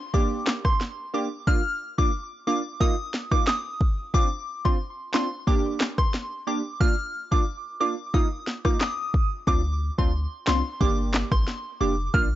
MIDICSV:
0, 0, Header, 1, 5, 480
1, 0, Start_track
1, 0, Key_signature, -2, "minor"
1, 0, Tempo, 666667
1, 1061, Time_signature, 4, 2, 24, 8
1, 8895, End_track
2, 0, Start_track
2, 0, Title_t, "Synth bell"
2, 0, Program_c, 0, 98
2, 100, Note_on_c, 0, 86, 81
2, 178, Note_off_c, 0, 86, 0
2, 466, Note_on_c, 0, 84, 76
2, 536, Note_off_c, 0, 84, 0
2, 822, Note_on_c, 0, 86, 68
2, 899, Note_off_c, 0, 86, 0
2, 1061, Note_on_c, 0, 89, 99
2, 1208, Note_off_c, 0, 89, 0
2, 1427, Note_on_c, 0, 86, 74
2, 1497, Note_off_c, 0, 86, 0
2, 1779, Note_on_c, 0, 86, 79
2, 1858, Note_off_c, 0, 86, 0
2, 2021, Note_on_c, 0, 87, 88
2, 2099, Note_off_c, 0, 87, 0
2, 2387, Note_on_c, 0, 86, 78
2, 2456, Note_off_c, 0, 86, 0
2, 2501, Note_on_c, 0, 87, 72
2, 2846, Note_off_c, 0, 87, 0
2, 2983, Note_on_c, 0, 86, 101
2, 3129, Note_off_c, 0, 86, 0
2, 3348, Note_on_c, 0, 84, 76
2, 3417, Note_off_c, 0, 84, 0
2, 3700, Note_on_c, 0, 84, 78
2, 3778, Note_off_c, 0, 84, 0
2, 3940, Note_on_c, 0, 86, 80
2, 4018, Note_off_c, 0, 86, 0
2, 4307, Note_on_c, 0, 84, 75
2, 4376, Note_off_c, 0, 84, 0
2, 4661, Note_on_c, 0, 86, 70
2, 4739, Note_off_c, 0, 86, 0
2, 4900, Note_on_c, 0, 89, 94
2, 5047, Note_off_c, 0, 89, 0
2, 5268, Note_on_c, 0, 86, 72
2, 5337, Note_off_c, 0, 86, 0
2, 5620, Note_on_c, 0, 86, 76
2, 5698, Note_off_c, 0, 86, 0
2, 5860, Note_on_c, 0, 87, 86
2, 5938, Note_off_c, 0, 87, 0
2, 6229, Note_on_c, 0, 86, 76
2, 6298, Note_off_c, 0, 86, 0
2, 6341, Note_on_c, 0, 87, 74
2, 6686, Note_off_c, 0, 87, 0
2, 6822, Note_on_c, 0, 86, 104
2, 6968, Note_off_c, 0, 86, 0
2, 7189, Note_on_c, 0, 84, 78
2, 7258, Note_off_c, 0, 84, 0
2, 7541, Note_on_c, 0, 84, 76
2, 7619, Note_off_c, 0, 84, 0
2, 7781, Note_on_c, 0, 86, 82
2, 7859, Note_off_c, 0, 86, 0
2, 8148, Note_on_c, 0, 84, 70
2, 8217, Note_off_c, 0, 84, 0
2, 8501, Note_on_c, 0, 86, 70
2, 8579, Note_off_c, 0, 86, 0
2, 8740, Note_on_c, 0, 89, 96
2, 8887, Note_off_c, 0, 89, 0
2, 8895, End_track
3, 0, Start_track
3, 0, Title_t, "Synth stab"
3, 0, Program_c, 1, 62
3, 98, Note_on_c, 1, 58, 90
3, 100, Note_on_c, 1, 62, 88
3, 103, Note_on_c, 1, 67, 103
3, 765, Note_off_c, 1, 58, 0
3, 767, Note_off_c, 1, 62, 0
3, 768, Note_off_c, 1, 67, 0
3, 818, Note_on_c, 1, 58, 77
3, 820, Note_on_c, 1, 62, 70
3, 823, Note_on_c, 1, 67, 85
3, 925, Note_off_c, 1, 58, 0
3, 926, Note_off_c, 1, 62, 0
3, 927, Note_off_c, 1, 67, 0
3, 1059, Note_on_c, 1, 58, 90
3, 1061, Note_on_c, 1, 62, 81
3, 1063, Note_on_c, 1, 65, 96
3, 1165, Note_off_c, 1, 58, 0
3, 1166, Note_off_c, 1, 62, 0
3, 1168, Note_off_c, 1, 65, 0
3, 1425, Note_on_c, 1, 58, 76
3, 1428, Note_on_c, 1, 62, 73
3, 1430, Note_on_c, 1, 65, 86
3, 1520, Note_off_c, 1, 58, 0
3, 1522, Note_off_c, 1, 62, 0
3, 1523, Note_off_c, 1, 65, 0
3, 1779, Note_on_c, 1, 58, 83
3, 1781, Note_on_c, 1, 62, 74
3, 1783, Note_on_c, 1, 65, 87
3, 1885, Note_off_c, 1, 58, 0
3, 1886, Note_off_c, 1, 62, 0
3, 1888, Note_off_c, 1, 65, 0
3, 2018, Note_on_c, 1, 58, 94
3, 2020, Note_on_c, 1, 63, 88
3, 2022, Note_on_c, 1, 65, 103
3, 2125, Note_off_c, 1, 58, 0
3, 2126, Note_off_c, 1, 63, 0
3, 2127, Note_off_c, 1, 65, 0
3, 2385, Note_on_c, 1, 58, 75
3, 2387, Note_on_c, 1, 63, 68
3, 2389, Note_on_c, 1, 65, 82
3, 2480, Note_off_c, 1, 58, 0
3, 2481, Note_off_c, 1, 63, 0
3, 2482, Note_off_c, 1, 65, 0
3, 2978, Note_on_c, 1, 60, 87
3, 2981, Note_on_c, 1, 62, 80
3, 2983, Note_on_c, 1, 65, 102
3, 3085, Note_off_c, 1, 60, 0
3, 3086, Note_off_c, 1, 62, 0
3, 3087, Note_off_c, 1, 65, 0
3, 3346, Note_on_c, 1, 60, 79
3, 3348, Note_on_c, 1, 62, 72
3, 3350, Note_on_c, 1, 65, 84
3, 3441, Note_off_c, 1, 60, 0
3, 3442, Note_off_c, 1, 62, 0
3, 3443, Note_off_c, 1, 65, 0
3, 3699, Note_on_c, 1, 60, 76
3, 3701, Note_on_c, 1, 62, 74
3, 3703, Note_on_c, 1, 65, 91
3, 3805, Note_off_c, 1, 60, 0
3, 3806, Note_off_c, 1, 62, 0
3, 3807, Note_off_c, 1, 65, 0
3, 3938, Note_on_c, 1, 58, 93
3, 3941, Note_on_c, 1, 62, 87
3, 3943, Note_on_c, 1, 67, 108
3, 4606, Note_off_c, 1, 58, 0
3, 4607, Note_off_c, 1, 62, 0
3, 4608, Note_off_c, 1, 67, 0
3, 4657, Note_on_c, 1, 58, 74
3, 4660, Note_on_c, 1, 62, 72
3, 4662, Note_on_c, 1, 67, 83
3, 4765, Note_off_c, 1, 58, 0
3, 4766, Note_off_c, 1, 62, 0
3, 4767, Note_off_c, 1, 67, 0
3, 4898, Note_on_c, 1, 58, 92
3, 4900, Note_on_c, 1, 62, 81
3, 4902, Note_on_c, 1, 65, 97
3, 5005, Note_off_c, 1, 58, 0
3, 5006, Note_off_c, 1, 62, 0
3, 5007, Note_off_c, 1, 65, 0
3, 5266, Note_on_c, 1, 58, 77
3, 5268, Note_on_c, 1, 62, 72
3, 5270, Note_on_c, 1, 65, 87
3, 5360, Note_off_c, 1, 58, 0
3, 5362, Note_off_c, 1, 62, 0
3, 5363, Note_off_c, 1, 65, 0
3, 5618, Note_on_c, 1, 58, 80
3, 5621, Note_on_c, 1, 62, 72
3, 5623, Note_on_c, 1, 65, 86
3, 5725, Note_off_c, 1, 58, 0
3, 5726, Note_off_c, 1, 62, 0
3, 5727, Note_off_c, 1, 65, 0
3, 5858, Note_on_c, 1, 58, 90
3, 5861, Note_on_c, 1, 63, 86
3, 5863, Note_on_c, 1, 65, 100
3, 5965, Note_off_c, 1, 58, 0
3, 5966, Note_off_c, 1, 63, 0
3, 5967, Note_off_c, 1, 65, 0
3, 6226, Note_on_c, 1, 58, 75
3, 6228, Note_on_c, 1, 63, 71
3, 6230, Note_on_c, 1, 65, 81
3, 6320, Note_off_c, 1, 58, 0
3, 6322, Note_off_c, 1, 63, 0
3, 6323, Note_off_c, 1, 65, 0
3, 6818, Note_on_c, 1, 60, 87
3, 6820, Note_on_c, 1, 62, 85
3, 6823, Note_on_c, 1, 65, 92
3, 6925, Note_off_c, 1, 60, 0
3, 6926, Note_off_c, 1, 62, 0
3, 6927, Note_off_c, 1, 65, 0
3, 7186, Note_on_c, 1, 60, 79
3, 7189, Note_on_c, 1, 62, 70
3, 7191, Note_on_c, 1, 65, 82
3, 7281, Note_off_c, 1, 60, 0
3, 7282, Note_off_c, 1, 62, 0
3, 7283, Note_off_c, 1, 65, 0
3, 7539, Note_on_c, 1, 60, 81
3, 7541, Note_on_c, 1, 62, 72
3, 7543, Note_on_c, 1, 65, 89
3, 7645, Note_off_c, 1, 60, 0
3, 7646, Note_off_c, 1, 62, 0
3, 7648, Note_off_c, 1, 65, 0
3, 7779, Note_on_c, 1, 58, 98
3, 7782, Note_on_c, 1, 62, 85
3, 7783, Note_on_c, 1, 67, 99
3, 8446, Note_off_c, 1, 58, 0
3, 8447, Note_off_c, 1, 62, 0
3, 8448, Note_off_c, 1, 67, 0
3, 8500, Note_on_c, 1, 58, 75
3, 8502, Note_on_c, 1, 62, 73
3, 8504, Note_on_c, 1, 67, 85
3, 8606, Note_off_c, 1, 58, 0
3, 8607, Note_off_c, 1, 62, 0
3, 8608, Note_off_c, 1, 67, 0
3, 8739, Note_on_c, 1, 58, 87
3, 8741, Note_on_c, 1, 62, 83
3, 8743, Note_on_c, 1, 65, 97
3, 8846, Note_off_c, 1, 58, 0
3, 8847, Note_off_c, 1, 62, 0
3, 8847, Note_off_c, 1, 65, 0
3, 8895, End_track
4, 0, Start_track
4, 0, Title_t, "808-style bass"
4, 0, Program_c, 2, 38
4, 6821, Note_on_c, 2, 38, 107
4, 7131, Note_off_c, 2, 38, 0
4, 7190, Note_on_c, 2, 38, 92
4, 7392, Note_off_c, 2, 38, 0
4, 7542, Note_on_c, 2, 36, 88
4, 7649, Note_off_c, 2, 36, 0
4, 7781, Note_on_c, 2, 31, 103
4, 8091, Note_off_c, 2, 31, 0
4, 8147, Note_on_c, 2, 33, 87
4, 8243, Note_off_c, 2, 33, 0
4, 8501, Note_on_c, 2, 29, 87
4, 8704, Note_off_c, 2, 29, 0
4, 8741, Note_on_c, 2, 34, 108
4, 8895, Note_off_c, 2, 34, 0
4, 8895, End_track
5, 0, Start_track
5, 0, Title_t, "Drums"
5, 100, Note_on_c, 9, 36, 90
5, 172, Note_off_c, 9, 36, 0
5, 339, Note_on_c, 9, 38, 108
5, 340, Note_on_c, 9, 39, 87
5, 411, Note_off_c, 9, 38, 0
5, 412, Note_off_c, 9, 39, 0
5, 466, Note_on_c, 9, 36, 85
5, 466, Note_on_c, 9, 37, 99
5, 538, Note_off_c, 9, 36, 0
5, 538, Note_off_c, 9, 37, 0
5, 581, Note_on_c, 9, 38, 55
5, 653, Note_off_c, 9, 38, 0
5, 1060, Note_on_c, 9, 36, 117
5, 1132, Note_off_c, 9, 36, 0
5, 1429, Note_on_c, 9, 36, 85
5, 1501, Note_off_c, 9, 36, 0
5, 2021, Note_on_c, 9, 36, 92
5, 2093, Note_off_c, 9, 36, 0
5, 2260, Note_on_c, 9, 38, 66
5, 2332, Note_off_c, 9, 38, 0
5, 2387, Note_on_c, 9, 36, 84
5, 2387, Note_on_c, 9, 37, 98
5, 2459, Note_off_c, 9, 36, 0
5, 2459, Note_off_c, 9, 37, 0
5, 2501, Note_on_c, 9, 38, 93
5, 2502, Note_on_c, 9, 39, 77
5, 2573, Note_off_c, 9, 38, 0
5, 2574, Note_off_c, 9, 39, 0
5, 2741, Note_on_c, 9, 36, 100
5, 2813, Note_off_c, 9, 36, 0
5, 2981, Note_on_c, 9, 36, 115
5, 3053, Note_off_c, 9, 36, 0
5, 3349, Note_on_c, 9, 36, 86
5, 3421, Note_off_c, 9, 36, 0
5, 3701, Note_on_c, 9, 38, 111
5, 3702, Note_on_c, 9, 39, 88
5, 3773, Note_off_c, 9, 38, 0
5, 3774, Note_off_c, 9, 39, 0
5, 3941, Note_on_c, 9, 36, 93
5, 4013, Note_off_c, 9, 36, 0
5, 4180, Note_on_c, 9, 38, 109
5, 4181, Note_on_c, 9, 39, 84
5, 4252, Note_off_c, 9, 38, 0
5, 4253, Note_off_c, 9, 39, 0
5, 4306, Note_on_c, 9, 37, 93
5, 4307, Note_on_c, 9, 36, 82
5, 4378, Note_off_c, 9, 37, 0
5, 4379, Note_off_c, 9, 36, 0
5, 4421, Note_on_c, 9, 38, 60
5, 4493, Note_off_c, 9, 38, 0
5, 4900, Note_on_c, 9, 36, 118
5, 4972, Note_off_c, 9, 36, 0
5, 5269, Note_on_c, 9, 36, 86
5, 5341, Note_off_c, 9, 36, 0
5, 5861, Note_on_c, 9, 36, 92
5, 5933, Note_off_c, 9, 36, 0
5, 6100, Note_on_c, 9, 38, 67
5, 6172, Note_off_c, 9, 38, 0
5, 6227, Note_on_c, 9, 36, 84
5, 6227, Note_on_c, 9, 37, 101
5, 6299, Note_off_c, 9, 36, 0
5, 6299, Note_off_c, 9, 37, 0
5, 6342, Note_on_c, 9, 38, 96
5, 6343, Note_on_c, 9, 39, 78
5, 6414, Note_off_c, 9, 38, 0
5, 6415, Note_off_c, 9, 39, 0
5, 6581, Note_on_c, 9, 36, 99
5, 6653, Note_off_c, 9, 36, 0
5, 6821, Note_on_c, 9, 36, 115
5, 6893, Note_off_c, 9, 36, 0
5, 7190, Note_on_c, 9, 36, 87
5, 7262, Note_off_c, 9, 36, 0
5, 7541, Note_on_c, 9, 38, 116
5, 7542, Note_on_c, 9, 39, 91
5, 7613, Note_off_c, 9, 38, 0
5, 7614, Note_off_c, 9, 39, 0
5, 7781, Note_on_c, 9, 36, 96
5, 7853, Note_off_c, 9, 36, 0
5, 8021, Note_on_c, 9, 38, 107
5, 8022, Note_on_c, 9, 39, 89
5, 8093, Note_off_c, 9, 38, 0
5, 8094, Note_off_c, 9, 39, 0
5, 8147, Note_on_c, 9, 37, 100
5, 8148, Note_on_c, 9, 36, 84
5, 8219, Note_off_c, 9, 37, 0
5, 8220, Note_off_c, 9, 36, 0
5, 8262, Note_on_c, 9, 38, 57
5, 8334, Note_off_c, 9, 38, 0
5, 8741, Note_on_c, 9, 36, 115
5, 8813, Note_off_c, 9, 36, 0
5, 8895, End_track
0, 0, End_of_file